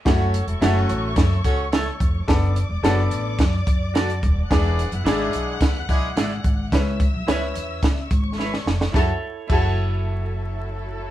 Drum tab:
CC |----------------|----------------|----------------|----------------|
HH |x-xxx-x-x-x-x-x-|x-x-x-x-x-x-xxx-|x-xxx-x-x-x-x-x-|x-x-x-x-x-x-----|
SD |o---o---o---o---|o---o---o---o---|o---o---o---o---|o---o---o---oooo|
BD |o-------o-o---o-|o-------o-o---o-|o-------o-o---o-|o-o-----o-o-----|

CC |----x-----------|
HH |----------------|
SD |o---------------|
BD |o---o-----------|